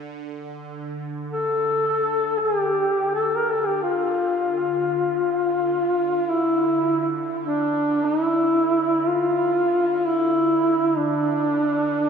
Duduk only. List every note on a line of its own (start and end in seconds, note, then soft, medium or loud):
1.33 2.40 A4 medium
2.39 2.59 G#4 medium
2.59 3.14 G4 medium
3.15 3.37 A4 medium
3.36 3.52 A#4 medium
3.51 3.68 A4 medium
3.66 3.83 G4 medium
3.83 6.31 F4 medium
6.29 7.11 E4 medium
7.45 8.06 D4 medium
8.05 8.23 D#4 medium
8.23 9.09 E4 medium
9.08 9.97 F4 medium
9.97 10.08 F4 medium
10.06 11.00 E4 medium
10.98 12.09 D4 medium